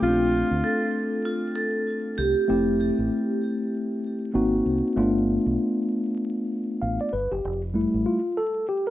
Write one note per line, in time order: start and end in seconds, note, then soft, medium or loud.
0.00 0.42 A#1 medium
0.00 2.44 A3 medium
0.00 2.45 C4 medium
0.00 0.10 C#4 soft
0.00 2.46 F4 medium
0.00 1.22 F4 medium
0.08 2.48 D4 medium
0.51 0.61 D2 medium
0.64 1.27 A4 medium
1.25 1.54 F4 medium
1.55 2.20 A4 loud
2.18 2.33 C2 medium
2.18 3.38 G4 medium
2.48 2.90 F1 loud
2.48 4.30 A3 medium
2.48 4.31 C4 medium
2.48 4.31 E4 medium
2.48 4.31 G4 medium
2.99 3.09 A1 medium
4.34 4.60 G#1 medium
4.34 4.96 A#3 medium
4.34 4.96 C4 medium
4.34 4.96 D#4 medium
4.34 4.97 F#4 medium
4.66 4.81 C2 medium
4.96 5.37 G1 loud
4.96 7.09 A3 medium
4.96 7.09 B3 medium
4.96 7.09 D4 medium
4.96 7.10 F4 medium
5.46 5.56 B1 medium
6.82 6.97 A1 medium
6.82 6.99 F5 medium
7.01 7.12 D5 medium
7.13 7.28 G1 medium
7.13 7.30 B4 medium
7.32 7.42 F#1 medium
7.32 7.61 G4 medium
7.45 7.85 F1 medium
7.74 8.18 G3 medium
7.74 8.18 A3 medium
7.74 8.19 E4 medium
7.94 8.04 A1 medium
8.06 8.38 F4 medium
8.37 8.66 A4 medium
8.69 8.85 G4 medium
8.87 8.90 A#4 medium